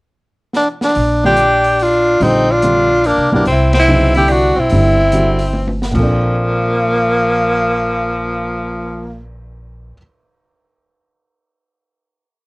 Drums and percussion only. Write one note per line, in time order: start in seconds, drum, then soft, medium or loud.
0.53 snare medium
0.81 snare medium
0.95 open hi-hat soft
1.37 closed hi-hat soft
1.64 open hi-hat soft
1.79 open hi-hat soft
2.21 open hi-hat soft
2.62 closed hi-hat soft
3.04 open hi-hat soft
3.45 open hi-hat soft
3.73 snare medium
3.73 ride medium
4.14 open hi-hat soft
4.28 open hi-hat soft
4.70 open hi-hat soft
5.12 closed hi-hat soft
5.39 open hi-hat soft
5.53 high tom soft
5.67 high tom medium
5.82 snare medium
5.95 kick medium
5.95 crash medium
6.23 cymbal swell soft